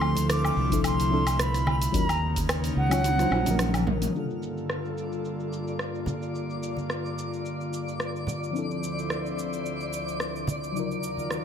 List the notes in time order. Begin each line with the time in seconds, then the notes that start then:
Already playing: D2 D3 F3 A3 C4 D4 E4 A4 C6 F6
0.01 low woodblock
0.15 open hi-hat, high conga, cabasa
0.30 D6, cross-stick, open hi-hat, cabasa
0.45 cabasa, low woodblock
0.57 C2
0.69 F3 C4 D4 E4 A4, kick, open hi-hat, cabasa
0.84 C6, open hi-hat, cabasa, low woodblock
1.00 open hi-hat, cabasa
1.10 F3 C4 D4 E4 A4
1.27 open hi-hat, cabasa, low woodblock
1.39 B5, cross-stick, open hi-hat, cabasa
1.54 cross-stick, open hi-hat, cabasa
1.67 high conga, low woodblock
1.82 open hi-hat, cabasa
1.92 D#2 C#3 D#3 F#3 A#3 C#4 D#4 F4 A#4, kick, open hi-hat, cabasa
1.97 A#5
2.09 open hi-hat, cabasa, low woodblock
2.36 kick, open hi-hat, high conga, cabasa
2.49 cross-stick, open hi-hat, cabasa, low woodblock
2.64 open hi-hat, cabasa
2.76 C#2 F#5
2.89 F#3 C#4 D#4 F4 C#5, open hi-hat, cabasa, low woodblock
3.04 open hi-hat, high tom, cabasa
3.17 F#3 C#4 D#4 F4, cross-stick, open hi-hat, high tom, cabasa
3.21 C5
3.29 A#1 F#3 C#4 D#4 F4, high tom, low woodblock
3.33 C5
3.43 F#3 C#4 D#4, open hi-hat, mid tom, high conga
3.47 F3 A#4, cabasa
3.59 cross-stick, open hi-hat, mid tom, cabasa
3.74 open hi-hat, cabasa, low woodblock
3.87 mid tom, low conga
4.02 mid tom, open hi-hat, cabasa
4.10 G2 G3 A#3 D5
4.14 D3 D4 F4 A4, cabasa
4.30 cabasa
4.42 cabasa
4.58 cabasa
4.70 cross-stick, cabasa
4.85 cabasa
4.98 cabasa
5.12 cabasa
5.25 cabasa
5.40 cabasa
5.53 cabasa
5.68 cabasa
5.79 cross-stick, cabasa
5.95 cabasa
6.06 high conga, low conga, cabasa
6.22 cabasa
6.35 cabasa
6.50 cabasa
6.63 cabasa
6.77 high conga, cabasa
6.90 cross-stick, cabasa
7.06 cabasa
7.18 cabasa
7.33 cabasa
7.46 cabasa
7.61 cabasa
7.73 cabasa
7.88 cabasa
8.00 cross-stick, cabasa
8.16 cabasa
8.27 low conga, cabasa
8.43 cabasa
8.51 F3 C4 D4 C5
8.55 D2 F3 E4 A4, cabasa
8.71 cabasa
8.83 cabasa
8.99 cabasa
9.10 cross-stick, cabasa
9.26 cabasa
9.39 cabasa
9.53 cabasa
9.66 cabasa
9.80 cabasa
9.93 cabasa
10.08 cabasa
10.20 cross-stick, cabasa
10.36 cabasa
10.47 high conga, low conga, cabasa
10.64 cabasa
10.72 D#2 C#3 D#3 F#3 D#4 F4 A#4
10.76 F4 A#4, cabasa
10.91 cabasa
11.03 cabasa
11.17 high conga, cabasa
11.31 cross-stick, cabasa